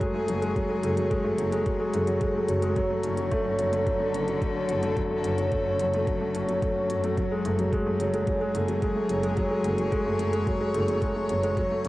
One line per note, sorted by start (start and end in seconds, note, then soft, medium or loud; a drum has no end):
0.00 0.28 F#3 medium
0.00 11.88 F#3 medium
0.00 0.42 G#3 medium
0.00 0.14 A3 medium
0.00 2.76 G#4 medium
0.00 7.17 C#5 medium
0.00 kick loud
0.00 closed hi-hat soft
0.14 0.28 A3 medium
0.28 0.46 F#1 loud
0.28 0.41 F#3 medium
0.28 closed hi-hat medium
0.42 0.55 G#3 medium
0.42 closed hi-hat soft
0.56 0.69 F#3 medium
0.56 kick loud
0.56 closed hi-hat soft
0.69 0.83 G#3 medium
0.83 1.01 F#1 loud
0.83 0.97 A3 medium
0.83 closed hi-hat medium
0.97 1.10 F#3 medium
0.97 closed hi-hat soft
1.11 1.24 G#3 medium
1.11 kick loud
1.11 closed hi-hat soft
1.24 1.33 F#1 medium
1.24 1.38 A3 medium
1.38 1.56 F#1 medium
1.38 1.52 F#3 medium
1.38 closed hi-hat medium
1.52 1.66 G#3 medium
1.52 closed hi-hat soft
1.66 1.79 F#3 medium
1.66 kick loud
1.66 closed hi-hat soft
1.80 1.93 G#3 medium
1.94 2.11 F#1 medium
1.94 2.07 A3 medium
1.94 closed hi-hat medium
2.07 2.21 F#3 medium
2.07 closed hi-hat soft
2.21 2.34 G#3 medium
2.21 kick loud
2.21 closed hi-hat soft
2.35 2.48 A3 medium
2.48 2.66 F#1 loud
2.48 2.62 F#3 medium
2.48 closed hi-hat medium
2.62 2.75 G#3 medium
2.62 closed hi-hat soft
2.76 2.90 F#3 loud
2.76 kick loud
2.76 closed hi-hat soft
2.90 3.03 A3 medium
3.00 3.21 F#1 loud
3.00 7.17 D3 loud
3.00 3.17 C#4 medium
3.00 closed hi-hat medium
3.17 3.31 F#3 medium
3.17 closed hi-hat soft
3.32 3.45 A3 medium
3.32 kick loud
3.32 closed hi-hat soft
3.45 3.54 F#1 loud
3.45 3.58 C#4 medium
3.59 3.76 F#1 medium
3.59 3.72 F#3 medium
3.59 closed hi-hat medium
3.73 3.86 A3 medium
3.73 7.17 A4 medium
3.73 closed hi-hat soft
3.86 4.00 F#3 medium
3.86 kick loud
3.86 closed hi-hat soft
4.00 4.13 A3 medium
4.14 4.31 F#1 loud
4.14 4.27 C#4 medium
4.14 closed hi-hat medium
4.28 4.41 F#3 medium
4.28 closed hi-hat soft
4.42 4.55 A3 medium
4.42 kick loud
4.42 closed hi-hat soft
4.55 4.68 C#4 medium
4.69 4.86 F#1 loud
4.69 4.82 F#3 medium
4.69 closed hi-hat medium
4.83 4.96 A3 medium
4.83 closed hi-hat soft
4.97 5.10 F#3 medium
4.97 kick loud
4.97 closed hi-hat soft
5.11 5.24 A3 medium
5.24 5.41 F#1 loud
5.24 5.38 C#4 medium
5.24 closed hi-hat medium
5.38 5.51 F#3 medium
5.38 closed hi-hat soft
5.52 5.65 A3 medium
5.52 kick loud
5.52 closed hi-hat soft
5.66 5.74 F#1 medium
5.66 5.79 C#4 medium
5.79 5.96 F#1 medium
5.79 5.93 F#3 medium
5.79 closed hi-hat medium
5.93 6.07 A3 medium
5.93 closed hi-hat soft
6.07 6.20 F#3 medium
6.07 kick loud
6.07 closed hi-hat soft
6.21 6.34 A3 medium
6.34 6.52 F#1 medium
6.34 6.47 C#4 medium
6.34 closed hi-hat medium
6.48 6.61 F#3 medium
6.48 closed hi-hat soft
6.62 6.75 A3 medium
6.62 kick loud
6.62 closed hi-hat soft
6.76 6.89 C#4 medium
6.90 7.07 F#2 medium
6.90 7.03 F#3 medium
6.90 closed hi-hat medium
7.04 7.17 A3 medium
7.04 closed hi-hat soft
7.17 7.30 F#3 medium
7.17 kick loud
7.17 closed hi-hat soft
7.31 7.44 G#3 medium
7.44 7.62 F#1 loud
7.44 7.58 A3 medium
7.44 closed hi-hat medium
7.59 7.71 F#3 medium
7.59 closed hi-hat soft
7.72 7.85 G#3 medium
7.72 kick loud
7.72 closed hi-hat soft
7.86 7.94 F#1 loud
7.86 7.99 A3 medium
8.00 8.17 F#1 medium
8.00 8.13 F#3 medium
8.00 closed hi-hat medium
8.13 8.26 G#3 medium
8.13 closed hi-hat soft
8.19 11.57 G#4 medium
8.27 8.40 F#3 medium
8.27 kick loud
8.27 closed hi-hat soft
8.41 8.54 G#3 medium
8.55 8.72 F#1 loud
8.55 8.68 A3 medium
8.55 closed hi-hat medium
8.68 8.81 F#3 medium
8.68 closed hi-hat soft
8.82 8.95 G#3 medium
8.82 11.88 C#5 medium
8.82 kick loud
8.82 closed hi-hat soft
8.96 9.09 A3 medium
9.09 9.27 F#1 loud
9.09 9.23 F#3 medium
9.09 closed hi-hat medium
9.23 9.36 G#3 medium
9.23 closed hi-hat soft
9.37 9.50 F#3 medium
9.37 kick loud
9.37 closed hi-hat soft
9.51 9.64 G#3 medium
9.64 9.82 F#1 loud
9.64 9.77 A3 medium
9.64 closed hi-hat medium
9.78 9.91 F#3 medium
9.78 closed hi-hat soft
9.92 10.05 G#3 medium
9.92 kick loud
9.92 closed hi-hat soft
10.06 10.14 F#1 loud
10.06 10.19 A3 medium
10.19 10.37 F#1 medium
10.19 10.32 F#3 medium
10.19 closed hi-hat medium
10.33 10.46 G#3 medium
10.33 closed hi-hat soft
10.47 10.60 F#3 medium
10.47 kick loud
10.47 closed hi-hat soft
10.61 10.74 G#3 medium
10.74 10.92 F#1 loud
10.74 10.88 A3 medium
10.74 closed hi-hat medium
10.88 11.01 F#3 medium
10.88 closed hi-hat soft
11.02 11.15 G#3 medium
11.02 kick loud
11.02 closed hi-hat soft
11.16 11.29 A3 medium
11.29 11.47 F#1 loud
11.29 11.43 F#3 medium
11.29 closed hi-hat medium
11.43 11.57 G#3 medium
11.43 closed hi-hat soft
11.57 11.70 F#3 loud
11.57 kick loud
11.57 closed hi-hat soft
11.71 11.84 A3 medium
11.81 11.88 F#1 loud
11.81 11.88 D3 medium
11.81 11.88 C#4 medium
11.81 closed hi-hat medium